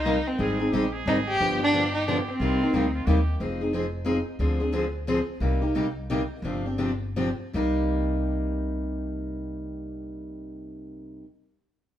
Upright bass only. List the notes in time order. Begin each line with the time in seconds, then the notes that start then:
Already playing: C2
0.39 G#1
0.73 A#1
1.06 G#1
1.40 G1
2.40 C2
2.73 D2
3.07 D#2
3.40 F1
4.39 D2
5.40 C2
6.42 G1
7.54 C2